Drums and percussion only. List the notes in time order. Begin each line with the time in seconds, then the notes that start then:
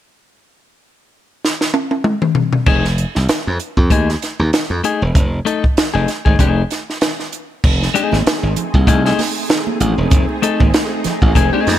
1.45 snare
1.61 snare
1.74 high tom
1.91 high tom
2.04 mid tom
2.22 mid tom
2.35 floor tom
2.53 floor tom
2.66 kick, crash
2.85 snare
2.98 closed hi-hat
3.15 snare
3.29 snare, closed hi-hat
3.60 closed hi-hat
3.77 kick
3.90 kick, closed hi-hat
4.09 snare
4.22 snare, closed hi-hat
4.53 snare, closed hi-hat
4.84 closed hi-hat
5.15 kick, closed hi-hat
5.47 closed hi-hat
5.64 kick
5.77 snare, closed hi-hat
6.08 snare, closed hi-hat
6.26 kick
6.39 kick, closed hi-hat
6.71 snare, closed hi-hat
6.90 snare
7.01 snare, closed hi-hat
7.19 snare
7.32 closed hi-hat
7.64 kick, crash
7.81 snare, muted conga
7.95 closed hi-hat
8.12 snare, high conga
8.27 snare, closed hi-hat
8.56 closed hi-hat, low conga
8.74 kick, high conga
8.87 kick, closed hi-hat
9.05 snare
9.19 snare, open hi-hat, high conga
9.49 snare, closed hi-hat, muted conga
9.67 muted conga, high conga
9.80 closed hi-hat, low conga
10.10 kick, closed hi-hat, muted conga
10.29 muted conga
10.43 closed hi-hat
10.60 kick, high conga
10.74 snare, closed hi-hat
11.04 snare, closed hi-hat, low conga
11.22 kick, high conga
11.35 kick, closed hi-hat
11.53 muted conga
11.67 snare, open hi-hat, high conga